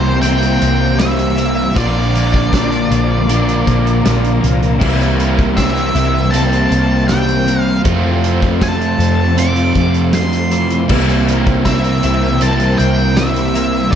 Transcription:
Already playing: C2 C3 E3 G3 A#3 C4 E4 G4 C5 A#5
0.21 C3 G3 A#3 C4 E4 G5, closed hi-hat
0.25 C4
0.43 closed hi-hat
0.61 C2 A#3, closed hi-hat
0.98 C3 E3 G3 C4 E5, snare, closed hi-hat, tambourine
1.19 closed hi-hat
1.37 G3 A#3 C4, closed hi-hat
1.74 A#1 A#2 D3 F3 A#3 D4 F4 A#4 D5 A#5, kick, closed hi-hat
1.78 A#3
2.14 A#3, closed hi-hat
2.34 kick, closed hi-hat
2.50 A#2 F3 A#3 D4, kick, snare, closed hi-hat, tambourine
2.72 closed hi-hat
2.89 A#1 F3 A#3, closed hi-hat
3.27 A#2 D3 F3 A#3 D4, closed hi-hat
3.49 closed hi-hat
3.67 A#1 A#3, kick, closed hi-hat
3.87 closed hi-hat
4.04 A#1 A#2 F3 A#3, snare, closed hi-hat, tambourine
4.25 closed hi-hat
4.41 C2 F3 A#3, closed hi-hat
4.63 closed hi-hat
4.79 C2 C3 E3 G3 A#3 C4 E4 C5 G5, kick, crash
5.01 snare, closed hi-hat
5.18 A#3, closed hi-hat
5.39 kick, closed hi-hat
5.55 C3 G3 C4 E5, kick, snare, closed hi-hat, tambourine
5.78 closed hi-hat
5.93 C2 E3 G3 C4, closed hi-hat
6.30 C3 G3 A#3 C4 E4 A5, closed hi-hat
6.53 closed hi-hat
6.71 C2 A#3, closed hi-hat
7.07 C3 E3 G3 C4 G5, snare, closed hi-hat, tambourine
7.29 closed hi-hat
7.46 G3 A#3 C4, closed hi-hat
7.62 F5
7.83 F2 C3 F3 A3 C4 F4 A4 F5, kick, closed hi-hat
8.24 closed hi-hat
8.42 kick, closed hi-hat
8.59 F2 C3 F3 A3, kick, snare, closed hi-hat, tambourine
8.63 A5
8.81 closed hi-hat
8.98 F2 C3 F3, closed hi-hat
9.36 F2 C3 F3 A3 C4 D6, closed hi-hat
9.40 F4
9.56 closed hi-hat
9.75 F2, kick, closed hi-hat
9.94 closed hi-hat
10.12 F2 C3 F3 C6, snare, closed hi-hat, tambourine
10.33 closed hi-hat
10.50 C3 E3 F3, closed hi-hat
10.70 closed hi-hat
10.88 C2 C3 E3 G3 A#3 C4 E4 A#4 C5 G5, kick, crash
11.10 closed hi-hat
11.27 A#3, closed hi-hat
11.47 kick, closed hi-hat
11.63 C3 G3 C4 E5, kick, snare, closed hi-hat, tambourine
11.84 closed hi-hat
12.02 C2 E3 G3 C4, closed hi-hat
12.39 C3 G3 A#3 C4 A5, closed hi-hat
12.44 E4
12.60 closed hi-hat
12.78 C2 A#3 G5, closed hi-hat
13.14 C3 E3 G3 C4 E5, snare, closed hi-hat, tambourine
13.36 closed hi-hat
13.53 G3 A#3 C4, closed hi-hat
13.91 A#2 D5

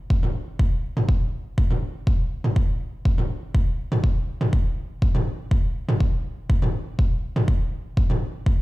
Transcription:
0.10 kick
0.23 mid tom
0.59 kick
0.97 mid tom
1.09 kick
1.58 kick
1.71 mid tom
2.07 kick
2.44 mid tom
2.56 kick
3.05 kick
3.18 mid tom
3.55 kick
3.92 mid tom
4.04 kick
4.41 mid tom
4.53 kick
5.02 kick
5.15 mid tom
5.51 kick
5.89 mid tom
6.00 kick
6.50 kick
6.62 mid tom
6.99 kick
7.36 mid tom
7.48 kick
7.97 kick
8.10 mid tom
8.46 kick

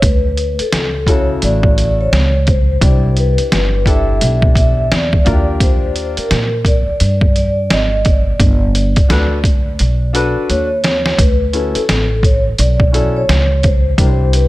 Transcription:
0.02 D2 B4, kick, closed hi-hat
0.37 closed hi-hat
0.59 A4, muted upright bass stroke, closed hi-hat
0.73 C#2, snare, closed hi-hat
1.07 C#3 E4 F#4 A4 C#5, kick, closed hi-hat
1.42 A1 D5, closed hi-hat
1.63 kick
1.78 closed hi-hat
1.91 D5
2.01 C#5
2.13 C#2, snare, closed hi-hat
2.47 C5, kick, closed hi-hat
2.81 C2 D4 E4 G4 D5, kick, closed hi-hat
3.17 B4, closed hi-hat
3.38 muted upright bass stroke, closed hi-hat
3.52 G1, snare, closed hi-hat
3.85 D4 E4 G4 A4 E5, kick, closed hi-hat
4.21 B1, closed hi-hat
4.42 kick
4.55 E5, kick, closed hi-hat
4.92 E2 D5, snare, closed hi-hat
5.13 kick
5.25 D#2 D4 F4 F#4 A#4 D5, kick, closed hi-hat
5.33 G4
5.60 C5, kick, closed hi-hat
5.96 closed hi-hat
6.17 A#4, muted upright bass stroke, closed hi-hat
6.31 A#2, snare, closed hi-hat
6.65 D5, kick, closed hi-hat
6.88 muted upright bass stroke
7.00 G2, closed hi-hat
7.21 kick
7.36 D5, closed hi-hat
7.70 G#1 D#5, snare, closed hi-hat
8.05 D5, kick, closed hi-hat
8.40 G1, kick, closed hi-hat
8.75 closed hi-hat
8.96 kick, closed hi-hat
9.09 D2 D4 F#4 A4 B4, snare, closed hi-hat
9.44 kick, closed hi-hat
9.79 B1, closed hi-hat
10.13 D4 F#4 A4 B4, closed hi-hat
10.36 muted upright bass stroke
10.50 D#2 C#5, closed hi-hat
10.84 C#5, snare, closed hi-hat
11.06 snare
11.19 D2 B4, kick, closed hi-hat
11.53 C#4 E4 F#4 A4, closed hi-hat
11.75 A4, muted upright bass stroke, closed hi-hat
11.89 A1, snare, closed hi-hat
12.23 C#5, kick, closed hi-hat
12.58 B1 D5, closed hi-hat
12.80 kick
12.92 C#4 E4 F#4 A4, closed hi-hat
13.16 C#5
13.29 C#2, snare, closed hi-hat
13.63 C5, kick, closed hi-hat
13.97 C2 D4 E4 G4 A#4, kick, closed hi-hat
14.06 C5
14.33 B4, closed hi-hat

